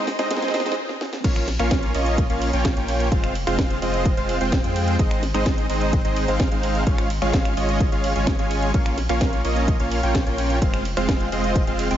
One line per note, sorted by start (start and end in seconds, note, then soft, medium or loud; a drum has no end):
0.07 snare loud
0.07 open hi-hat loud
0.19 0.29 G#3 loud
0.19 0.29 C4 loud
0.19 0.29 D#4 medium
0.19 0.29 C5 medium
0.19 0.29 D#5 loud
0.19 snare medium
0.19 closed hi-hat soft
0.31 0.52 G#3 loud
0.31 0.52 C4 medium
0.31 0.52 D#4 medium
0.31 0.52 C5 medium
0.31 0.52 D#5 loud
0.31 snare loud
0.31 closed hi-hat medium
0.37 snare medium
0.42 snare medium
0.42 closed hi-hat soft
0.48 snare medium
0.54 0.76 G#3 loud
0.54 0.76 C4 medium
0.54 0.76 D#4 medium
0.54 0.75 C5 medium
0.54 0.75 D#5 loud
0.54 snare loud
0.54 open hi-hat loud
0.60 snare loud
0.66 snare loud
0.66 closed hi-hat soft
0.72 snare loud
0.89 snare medium
1.01 snare medium
1.13 snare medium
1.24 1.57 A#1 loud
1.24 1.46 A#3 loud
1.24 1.46 C#4 medium
1.24 1.46 F4 medium
1.24 1.46 C#5 medium
1.24 1.46 F5 loud
1.24 kick loud
1.24 closed hi-hat medium
1.24 crash loud
1.24 ride medium
1.36 finger snap medium
1.36 closed hi-hat soft
1.48 snare soft
1.48 open hi-hat loud
1.48 ride medium
1.59 1.92 A#1 loud
1.59 1.92 A#3 loud
1.59 1.92 C#4 medium
1.59 1.92 F4 medium
1.59 1.92 C#5 medium
1.59 1.92 F5 loud
1.59 finger snap medium
1.59 closed hi-hat soft
1.71 kick loud
1.71 snare loud
1.71 closed hi-hat medium
1.71 ride medium
1.83 closed hi-hat soft
1.95 2.27 A#1 loud
1.95 2.27 A#3 medium
1.95 2.27 C#4 medium
1.95 2.27 F4 medium
1.95 2.27 C#5 medium
1.95 2.27 D#5 medium
1.95 open hi-hat loud
1.95 ride medium
2.06 closed hi-hat soft
2.18 kick loud
2.18 closed hi-hat medium
2.18 ride medium
2.30 2.51 A#1 loud
2.30 2.51 A#3 loud
2.30 2.51 C#4 medium
2.30 2.51 F4 medium
2.30 2.51 C#5 medium
2.30 2.51 F5 loud
2.30 closed hi-hat soft
2.42 open hi-hat loud
2.42 ride medium
2.53 2.74 A#1 loud
2.53 2.74 A#3 medium
2.53 2.74 C#4 medium
2.53 2.74 F4 medium
2.53 2.74 C#5 medium
2.53 2.74 G5 medium
2.53 closed hi-hat soft
2.65 kick loud
2.65 snare loud
2.65 closed hi-hat medium
2.65 ride medium
2.77 3.09 A#1 loud
2.77 3.09 A#3 medium
2.77 3.09 C#4 medium
2.77 3.09 F4 medium
2.77 3.09 C#5 medium
2.77 3.09 G5 medium
2.77 closed hi-hat soft
2.88 open hi-hat loud
2.88 ride medium
3.00 closed hi-hat soft
3.12 3.45 F1 loud
3.12 3.34 G#3 loud
3.12 3.34 C4 medium
3.12 3.34 F4 medium
3.12 3.34 C5 medium
3.12 3.34 F5 loud
3.12 kick loud
3.12 closed hi-hat medium
3.12 ride medium
3.24 finger snap medium
3.24 closed hi-hat soft
3.35 open hi-hat loud
3.35 ride medium
3.47 3.80 F1 loud
3.47 3.79 G#3 loud
3.47 3.79 C4 medium
3.47 3.79 F4 medium
3.47 3.79 C5 medium
3.47 3.79 F5 loud
3.47 finger snap medium
3.47 closed hi-hat soft
3.59 kick loud
3.59 snare loud
3.59 closed hi-hat medium
3.59 ride medium
3.70 closed hi-hat soft
3.82 4.15 F1 loud
3.82 4.14 G#3 medium
3.82 4.14 C4 medium
3.82 4.14 F4 medium
3.82 4.14 C5 medium
3.82 4.14 D#5 medium
3.82 open hi-hat loud
3.82 ride medium
3.94 closed hi-hat soft
4.05 kick loud
4.05 closed hi-hat medium
4.05 ride medium
4.17 4.38 F1 loud
4.17 4.38 G#3 loud
4.17 4.38 C4 medium
4.17 4.38 F4 medium
4.17 4.38 C5 medium
4.17 4.38 F5 loud
4.17 closed hi-hat soft
4.29 open hi-hat loud
4.29 ride medium
4.41 4.62 F1 loud
4.41 4.61 G#3 medium
4.41 4.61 C4 medium
4.41 4.61 F4 medium
4.41 4.61 C5 medium
4.41 4.61 G5 medium
4.41 closed hi-hat soft
4.52 kick loud
4.52 snare loud
4.52 closed hi-hat medium
4.52 ride medium
4.64 4.97 F2 loud
4.64 4.96 G#3 medium
4.64 4.96 C4 medium
4.64 4.96 F4 medium
4.64 4.96 C5 medium
4.64 4.96 G5 medium
4.64 closed hi-hat soft
4.76 open hi-hat loud
4.76 ride medium
4.88 closed hi-hat soft
4.99 5.32 G#1 loud
4.99 5.21 G#3 loud
4.99 5.21 C4 medium
4.99 5.21 D#4 medium
4.99 5.21 C5 medium
4.99 5.21 D#5 loud
4.99 kick loud
4.99 closed hi-hat medium
4.99 ride medium
5.11 finger snap medium
5.11 closed hi-hat soft
5.23 snare soft
5.23 open hi-hat loud
5.23 ride medium
5.34 5.67 G#1 medium
5.34 5.67 G#3 loud
5.34 5.67 C4 medium
5.34 5.67 D#4 medium
5.34 5.67 C5 medium
5.34 5.67 D#5 loud
5.34 finger snap medium
5.34 closed hi-hat soft
5.46 kick loud
5.46 snare loud
5.46 closed hi-hat medium
5.46 ride medium
5.58 closed hi-hat soft
5.69 6.02 G#1 loud
5.69 6.02 G#3 medium
5.69 6.02 C4 medium
5.69 6.02 D#4 medium
5.69 6.02 C5 medium
5.69 6.02 D#5 medium
5.69 open hi-hat loud
5.69 ride medium
5.81 closed hi-hat soft
5.93 kick loud
5.93 closed hi-hat medium
5.93 ride medium
6.05 6.26 G#1 loud
6.05 6.26 G#3 loud
6.05 6.26 C4 medium
6.05 6.26 D#4 medium
6.05 6.26 C5 medium
6.05 6.26 D#5 loud
6.05 closed hi-hat soft
6.16 open hi-hat loud
6.16 ride medium
6.28 6.49 G#1 loud
6.28 6.49 G#3 medium
6.28 6.49 C4 medium
6.28 6.49 D#4 medium
6.28 6.49 C5 medium
6.28 6.49 F5 medium
6.28 closed hi-hat soft
6.40 kick loud
6.40 snare loud
6.40 closed hi-hat medium
6.40 ride medium
6.51 6.84 G#1 loud
6.51 6.84 G#3 medium
6.51 6.84 C4 medium
6.51 6.84 D#4 medium
6.51 6.84 C5 medium
6.51 6.84 F5 medium
6.51 closed hi-hat soft
6.63 open hi-hat loud
6.63 ride medium
6.75 closed hi-hat soft
6.87 7.20 G#1 loud
6.87 7.09 G#3 loud
6.87 7.09 C#4 medium
6.87 7.09 F4 medium
6.87 7.09 C#5 medium
6.87 7.09 F5 loud
6.87 kick loud
6.87 closed hi-hat medium
6.87 ride medium
6.98 finger snap medium
6.98 closed hi-hat soft
7.10 open hi-hat loud
7.10 ride medium
7.22 7.55 G#1 loud
7.22 7.54 G#3 loud
7.22 7.54 C#4 medium
7.22 7.54 F4 medium
7.22 7.54 C#5 medium
7.22 7.54 F5 loud
7.22 finger snap medium
7.22 closed hi-hat soft
7.33 kick loud
7.33 snare loud
7.33 closed hi-hat medium
7.33 ride medium
7.45 finger snap medium
7.45 closed hi-hat soft
7.57 7.90 G#1 loud
7.57 7.89 G#3 medium
7.57 7.89 C#4 medium
7.57 7.89 F4 medium
7.57 7.89 C#5 medium
7.57 7.89 D#5 medium
7.57 open hi-hat loud
7.57 ride medium
7.69 closed hi-hat soft
7.80 kick loud
7.80 closed hi-hat medium
7.80 ride medium
7.92 8.13 G#1 loud
7.92 8.13 G#3 medium
7.92 8.13 C#4 medium
7.92 8.13 F4 medium
7.92 8.13 C#5 medium
7.92 8.13 F5 loud
7.92 closed hi-hat soft
8.04 open hi-hat loud
8.04 ride medium
8.16 8.37 G#1 loud
8.16 8.36 G#3 medium
8.16 8.36 C#4 medium
8.16 8.36 F4 medium
8.16 8.36 C#5 medium
8.16 8.36 G#5 medium
8.16 closed hi-hat soft
8.27 kick loud
8.27 snare loud
8.27 closed hi-hat medium
8.27 ride medium
8.39 8.72 G#1 loud
8.39 8.71 G#3 loud
8.39 8.71 C#4 medium
8.39 8.71 F4 medium
8.39 8.71 C#5 medium
8.39 8.71 G#5 loud
8.39 closed hi-hat soft
8.51 open hi-hat loud
8.51 ride medium
8.62 closed hi-hat soft
8.74 9.07 A#1 loud
8.74 8.96 A#3 loud
8.74 8.96 C#4 medium
8.74 8.96 F4 medium
8.74 8.96 C#5 medium
8.74 8.96 F5 loud
8.74 kick loud
8.74 closed hi-hat medium
8.74 ride medium
8.86 finger snap medium
8.86 closed hi-hat soft
8.97 snare soft
8.97 open hi-hat loud
8.97 ride medium
9.09 9.42 A#1 loud
9.09 9.42 A#3 loud
9.09 9.42 C#4 medium
9.09 9.42 F4 medium
9.09 9.42 C#5 medium
9.09 9.42 F5 loud
9.09 finger snap medium
9.09 closed hi-hat soft
9.21 kick loud
9.21 snare loud
9.21 closed hi-hat medium
9.21 ride medium
9.33 closed hi-hat soft
9.45 9.77 A#1 loud
9.45 9.77 A#3 medium
9.45 9.77 C#4 medium
9.45 9.77 F4 medium
9.45 9.77 C#5 medium
9.45 9.77 D#5 medium
9.45 open hi-hat loud
9.45 ride medium
9.56 closed hi-hat soft
9.68 kick loud
9.68 closed hi-hat medium
9.68 ride medium
9.80 10.01 A#1 medium
9.80 10.01 A#3 loud
9.80 10.01 C#4 medium
9.80 10.01 F4 medium
9.80 10.01 C#5 medium
9.80 10.01 F5 loud
9.80 closed hi-hat soft
9.91 open hi-hat loud
9.91 ride medium
10.03 10.24 A#1 loud
10.03 10.24 A#3 medium
10.03 10.24 C#4 medium
10.03 10.24 F4 medium
10.03 10.24 C#5 medium
10.03 10.24 G5 medium
10.03 closed hi-hat soft
10.15 kick loud
10.15 snare loud
10.15 closed hi-hat medium
10.15 ride medium
10.27 10.59 A#1 loud
10.27 10.59 A#3 medium
10.27 10.59 C#4 medium
10.27 10.59 F4 medium
10.27 10.59 C#5 medium
10.27 10.59 G5 medium
10.27 closed hi-hat soft
10.38 open hi-hat loud
10.38 ride medium
10.50 closed hi-hat soft
10.62 10.95 F1 loud
10.62 10.84 G#3 loud
10.62 10.84 C4 medium
10.62 10.84 F4 medium
10.62 10.84 C5 medium
10.62 10.84 F5 loud
10.62 kick loud
10.62 closed hi-hat medium
10.62 ride medium
10.74 finger snap medium
10.74 closed hi-hat soft
10.85 open hi-hat loud
10.85 ride medium
10.97 11.30 F1 loud
10.97 11.29 G#3 loud
10.97 11.29 C4 medium
10.97 11.29 F4 medium
10.97 11.29 C5 medium
10.97 11.29 F5 loud
10.97 finger snap medium
10.97 closed hi-hat soft
11.09 kick loud
11.09 snare loud
11.09 closed hi-hat medium
11.09 ride medium
11.21 closed hi-hat soft
11.32 11.65 F1 loud
11.32 11.64 G#3 medium
11.32 11.64 C4 medium
11.32 11.64 F4 medium
11.32 11.64 C5 medium
11.32 11.64 D#5 medium
11.32 open hi-hat loud
11.32 ride medium
11.44 closed hi-hat soft
11.55 kick loud
11.55 closed hi-hat medium
11.55 ride medium
11.67 11.88 F1 loud
11.67 11.88 G#3 loud
11.67 11.88 C4 medium
11.67 11.88 F4 medium
11.67 11.88 C5 medium
11.67 11.88 F5 loud
11.67 closed hi-hat soft
11.79 open hi-hat loud
11.79 ride medium
11.91 11.97 F1 loud
11.91 11.97 G#3 medium
11.91 11.97 C4 medium
11.91 11.97 F4 medium
11.91 11.97 C5 medium
11.91 11.97 G5 medium
11.91 closed hi-hat soft